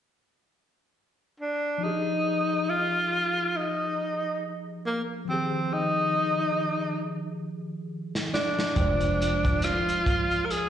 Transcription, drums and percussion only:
8.15 snare soft
8.34 snare medium
8.59 snare medium
8.76 kick medium
8.76 closed hi-hat medium
9.01 closed hi-hat soft
9.21 cross-stick soft
9.21 closed hi-hat medium
9.45 kick medium
9.45 closed hi-hat soft
9.62 cross-stick medium
9.62 closed hi-hat medium
9.89 closed hi-hat soft
10.06 kick medium
10.06 closed hi-hat medium
10.31 closed hi-hat soft
10.50 closed hi-hat medium

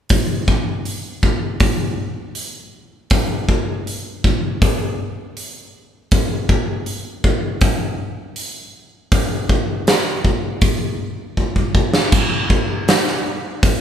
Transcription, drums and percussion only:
0.09 kick medium
0.09 open hi-hat soft
0.48 kick medium
0.85 open hi-hat soft
1.23 kick medium
1.60 kick loud
1.60 open hi-hat soft
2.35 open hi-hat soft
3.10 kick loud
3.10 open hi-hat soft
3.49 kick medium
3.87 open hi-hat soft
4.24 kick medium
4.62 kick loud
4.62 open hi-hat soft
5.37 open hi-hat soft
6.11 kick loud
6.11 open hi-hat soft
6.49 kick medium
6.86 open hi-hat soft
7.24 kick medium
7.61 kick loud
7.61 open hi-hat soft
8.36 open hi-hat medium
9.12 kick loud
9.12 open hi-hat medium
9.49 kick medium
9.87 snare loud
9.87 open hi-hat soft
10.25 kick medium
10.61 kick loud
10.61 open hi-hat soft
11.37 kick medium
11.56 kick medium
11.75 kick medium
11.94 snare medium
12.12 kick loud
12.12 crash medium
12.50 kick medium
12.88 snare loud
12.88 open hi-hat medium
13.08 snare soft
13.63 kick loud
13.63 open hi-hat medium

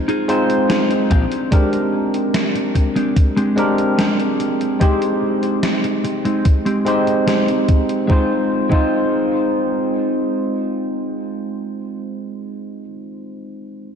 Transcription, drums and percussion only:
0.09 closed hi-hat soft
0.29 closed hi-hat medium
0.50 closed hi-hat soft
0.70 snare loud
0.70 closed hi-hat medium
0.91 closed hi-hat soft
1.11 kick loud
1.11 closed hi-hat medium
1.32 closed hi-hat soft
1.52 kick loud
1.52 closed hi-hat medium
1.73 closed hi-hat soft
2.14 closed hi-hat soft
2.34 snare loud
2.34 closed hi-hat medium
2.56 closed hi-hat soft
2.75 kick medium
2.75 closed hi-hat medium
2.96 closed hi-hat soft
3.16 kick loud
3.16 closed hi-hat medium
3.37 closed hi-hat soft
3.58 closed hi-hat medium
3.78 closed hi-hat soft
3.99 snare loud
3.99 closed hi-hat medium
4.20 closed hi-hat soft
4.40 closed hi-hat medium
4.61 closed hi-hat soft
4.81 kick loud
4.81 closed hi-hat medium
5.02 closed hi-hat soft
5.43 closed hi-hat soft
5.63 snare loud
5.63 closed hi-hat medium
5.84 closed hi-hat soft
6.05 closed hi-hat medium
6.25 closed hi-hat soft
6.45 kick loud
6.45 closed hi-hat medium
6.66 closed hi-hat soft
6.87 closed hi-hat medium
7.07 closed hi-hat soft
7.28 snare loud
7.28 closed hi-hat medium
7.48 closed hi-hat soft
7.68 kick loud
7.68 closed hi-hat medium
7.89 closed hi-hat soft
8.10 kick loud
8.72 kick loud

